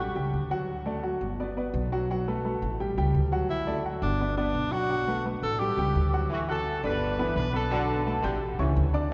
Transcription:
0.00 0.13 A1 medium
0.00 0.13 G3 medium
0.00 0.12 F#4 loud
0.00 0.13 G4 medium
0.00 0.13 G5 medium
0.15 0.32 C#2 medium
0.15 0.44 G3 medium
0.15 0.45 G4 medium
0.15 0.45 G5 medium
0.33 1.16 D2 medium
0.51 0.80 F#3 medium
0.51 0.80 F#4 medium
0.51 0.80 F#5 medium
0.86 1.00 A3 medium
0.86 1.00 A4 medium
0.86 1.01 D5 medium
1.03 1.32 F#3 medium
1.03 1.32 F#4 medium
1.03 1.32 F#5 medium
1.21 1.70 G1 medium
1.40 1.54 B3 medium
1.40 1.54 B4 medium
1.40 1.54 D5 medium
1.57 1.85 B3 medium
1.57 1.86 B4 medium
1.57 1.86 D5 medium
1.74 2.56 B1 medium
1.92 2.06 F#3 medium
1.92 2.06 F#4 medium
1.92 2.07 F#5 medium
2.10 2.24 F#3 medium
2.10 2.24 F#4 medium
2.10 2.25 F#5 medium
2.28 2.42 A3 medium
2.28 2.42 A4 medium
2.28 2.42 B4 medium
2.45 2.74 A3 medium
2.45 2.74 A4 medium
2.45 2.74 B4 medium
2.62 2.95 A1 medium
2.80 2.94 G3 medium
2.80 2.94 G4 medium
2.80 2.94 G5 medium
2.98 3.14 C#2 medium
2.98 3.26 G3 medium
2.98 3.26 G4 medium
2.98 3.27 G5 medium
3.14 3.97 D2 medium
3.32 3.61 F#3 medium
3.32 3.61 F#4 medium
3.32 3.61 F#5 medium
3.50 3.83 E4 medium
3.67 3.82 A3 medium
3.67 3.82 A4 medium
3.67 3.82 D5 medium
3.85 4.14 F#3 medium
3.85 4.14 F#4 medium
3.85 4.14 F#5 medium
4.02 4.51 G1 medium
4.02 4.35 D4 medium
4.21 4.35 B3 medium
4.21 4.35 B4 medium
4.21 4.35 D5 medium
4.37 4.66 B3 medium
4.37 4.73 D4 medium
4.37 4.67 B4 medium
4.37 4.67 D5 medium
4.54 5.37 B1 medium
4.72 4.87 F#3 medium
4.72 5.25 F#4 loud
4.72 4.87 F#4 medium
4.72 4.87 F#5 medium
4.90 5.04 F#3 medium
4.90 5.05 F#4 medium
4.90 5.05 F#5 medium
5.08 5.22 A3 medium
5.08 5.22 A4 medium
5.08 5.23 B4 medium
5.26 5.54 A3 medium
5.26 5.54 A4 medium
5.26 5.55 B4 medium
5.42 5.75 A1 medium
5.42 5.61 A4 loud
5.59 5.75 G3 medium
5.59 6.13 G4 medium
5.59 5.75 G4 medium
5.59 5.75 G5 medium
5.77 5.94 C#2 medium
5.77 6.07 G3 medium
5.77 6.07 G4 medium
5.77 6.07 G5 medium
5.95 6.78 D2 medium
6.13 6.28 F#3 medium
6.13 6.28 F#4 medium
6.13 6.28 F#5 medium
6.29 6.59 E3 loud
6.29 6.39 A3 medium
6.29 6.39 F#4 loud
6.48 6.81 C#4 medium
6.48 6.77 F#4 medium
6.48 6.82 A4 loud
6.48 6.77 F#5 medium
6.48 6.78 F#6 medium
6.83 7.32 G1 medium
6.83 7.02 D3 medium
6.83 7.12 D4 medium
6.83 7.33 D4 medium
6.83 7.33 B4 loud
6.83 7.12 D5 medium
6.83 7.13 D6 medium
7.19 7.47 E3 medium
7.19 7.48 B3 medium
7.19 7.48 B4 medium
7.19 7.48 B5 medium
7.36 8.18 B1 medium
7.36 7.53 D4 medium
7.36 7.53 B4 loud
7.54 7.68 B3 medium
7.54 8.20 D4 medium
7.54 8.20 A4 loud
7.54 7.68 B4 medium
7.54 7.68 B5 medium
7.70 7.99 D3 loud
7.70 8.00 F#3 medium
7.70 8.00 F#4 medium
7.70 8.00 F#5 medium
8.07 8.21 A3 medium
8.07 8.21 A4 medium
8.07 8.21 A5 medium
8.22 8.56 A1 loud
8.22 8.41 D3 loud
8.22 8.53 G4 medium
8.22 8.53 G5 medium
8.22 8.53 G6 medium
8.58 8.75 C#2 medium
8.58 8.87 E3 medium
8.58 8.88 C#4 medium
8.58 8.88 C#5 medium
8.58 8.88 C#6 medium
8.76 9.14 D2 medium
8.94 9.14 D4 medium
8.94 9.14 D5 medium
8.94 9.14 D6 medium

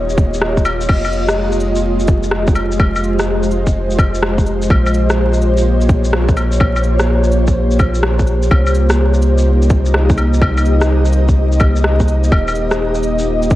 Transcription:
0.00 0.87 D#1 medium
0.00 1.82 A#3 medium
0.00 10.06 F4 medium
0.00 0.89 G4 medium
0.00 0.90 C#5 medium
0.00 5.97 D#5 medium
0.10 shaker soft
0.18 kick loud
0.18 cabasa medium
0.34 shaker medium
0.42 cross-stick loud
0.57 kick medium
0.57 shaker soft
0.65 cabasa medium
0.65 claves medium
0.81 cabasa soft
0.81 shaker medium
0.89 4.69 F1 medium
0.89 4.70 G#3 medium
0.89 kick loud
0.89 crash loud
0.89 claves medium
1.05 claves soft
1.05 shaker soft
1.13 cabasa medium
1.28 cross-stick loud
1.28 shaker medium
1.44 13.55 G4 medium
1.52 shaker soft
1.60 cabasa medium
1.76 shaker medium
2.00 cabasa soft
2.00 shaker soft
2.08 kick loud
2.08 cabasa medium
2.23 shaker medium
2.31 12.32 C5 medium
2.31 cross-stick loud
2.47 kick loud
2.47 shaker soft
2.55 cabasa medium
2.55 claves soft
2.72 shaker medium
2.80 kick loud
2.80 claves medium
2.96 claves soft
2.96 shaker soft
3.04 cabasa medium
3.19 cross-stick loud
3.19 shaker medium
3.43 shaker soft
3.51 cabasa medium
3.67 kick medium
3.67 shaker medium
3.91 shaker soft
3.99 kick loud
3.99 cabasa medium
3.99 claves medium
4.15 shaker medium
4.23 cross-stick loud
4.38 kick medium
4.38 shaker soft
4.46 cabasa medium
4.62 cabasa soft
4.62 shaker medium
4.70 8.50 A#1 medium
4.70 13.55 A#3 medium
4.70 kick loud
4.70 claves medium
4.86 claves soft
4.86 shaker soft
4.94 cabasa medium
5.06 8.51 C#5 medium
5.10 cross-stick loud
5.10 shaker medium
5.34 shaker soft
5.42 cabasa medium
5.58 shaker medium
5.81 cabasa soft
5.81 shaker soft
5.89 kick loud
5.89 cabasa medium
6.05 shaker medium
6.13 cross-stick loud
6.29 kick loud
6.29 shaker soft
6.37 cabasa medium
6.37 claves soft
6.52 shaker medium
6.60 kick loud
6.60 claves medium
6.76 claves soft
6.76 shaker soft
6.84 cabasa medium
7.00 cross-stick loud
7.00 shaker medium
7.24 shaker soft
7.32 cabasa medium
7.47 kick medium
7.47 shaker medium
7.71 shaker soft
7.79 kick loud
7.79 cabasa medium
7.79 claves soft
7.95 shaker medium
8.03 cross-stick loud
8.19 kick medium
8.19 shaker soft
8.27 cabasa medium
8.43 cabasa soft
8.43 shaker medium
8.51 12.31 C2 medium
8.51 kick loud
8.51 claves medium
8.67 claves soft
8.67 shaker soft
8.75 13.50 D#4 medium
8.75 cabasa medium
8.90 cross-stick loud
8.90 shaker medium
8.95 13.55 D#5 medium
9.14 shaker soft
9.22 cabasa medium
9.38 shaker medium
9.62 cabasa soft
9.62 shaker soft
9.70 kick loud
9.70 cabasa medium
9.86 shaker medium
9.94 cross-stick loud
10.10 kick loud
10.10 shaker soft
10.18 cabasa medium
10.18 claves soft
10.34 shaker medium
10.42 kick loud
10.42 claves medium
10.57 claves soft
10.57 shaker soft
10.66 cabasa medium
10.81 cross-stick loud
10.81 shaker medium
11.05 shaker soft
11.13 cabasa medium
11.29 kick medium
11.29 shaker medium
11.52 shaker soft
11.60 kick loud
11.60 cabasa medium
11.60 claves medium
11.76 shaker medium
11.84 cross-stick loud
12.00 kick medium
12.00 shaker soft
12.08 cabasa medium
12.24 cabasa soft
12.24 shaker medium
12.32 13.55 D#1 medium
12.32 kick loud
12.32 claves medium
12.48 claves soft
12.48 shaker soft
12.55 cabasa medium
12.71 13.55 F4 medium
12.71 cross-stick loud
12.71 shaker medium
12.95 shaker soft
13.03 cabasa medium
13.19 shaker medium
13.43 cabasa soft
13.43 shaker soft
13.50 kick loud
13.50 cabasa medium

